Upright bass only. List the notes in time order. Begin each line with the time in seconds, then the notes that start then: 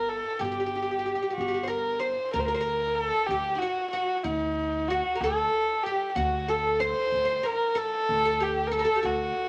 Already playing: G1
0.41 G1
1.38 G1
2.34 D2
3.29 D2
4.24 D2
5.20 D2
6.16 D2
7.12 D2
8.09 D2
9.04 D2